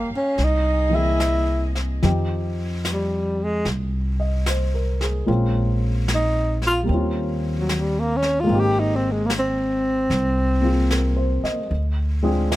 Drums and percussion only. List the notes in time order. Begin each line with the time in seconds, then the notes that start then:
0.38 brush sweep, snare
1.20 snare, hi-hat pedal
1.75 snare
2.03 brush sweep, snare
2.85 snare, hi-hat pedal
3.65 brush sweep, snare
4.46 snare, hi-hat pedal
5.01 snare
5.28 brush sweep
6.08 snare, hi-hat pedal
6.62 snare
6.88 brush sweep
7.69 snare, hi-hat pedal
8.22 snare
8.49 brush sweep
9.30 snare, hi-hat pedal
10.11 brush sweep, snare
10.91 snare, hi-hat pedal
11.45 snare
11.71 brush sweep
12.52 snare, hi-hat pedal